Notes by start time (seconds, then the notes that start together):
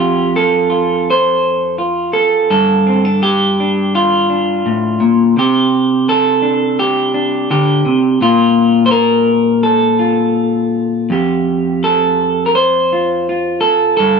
Already playing: F2 G4
0.00 F4
0.36 A4
0.70 F4
1.10 C5
1.78 F4
2.13 A4
2.50 G2 A4
2.87 C4
3.05 D4
3.23 G4
3.60 D4
3.95 F4
4.30 D4
4.66 A2
5.00 A#2
5.37 C3 G4
6.09 A4
6.42 D4
6.79 G4
7.14 D4
7.51 D3 G4
7.86 C3
8.21 A#2 F4
8.86 C5
8.91 A#4
9.63 A4
9.99 F4
11.10 F2 G4
11.84 A4
12.46 A#4
12.55 C5
12.93 F4
13.29 F4
13.61 A4
13.97 G2 A4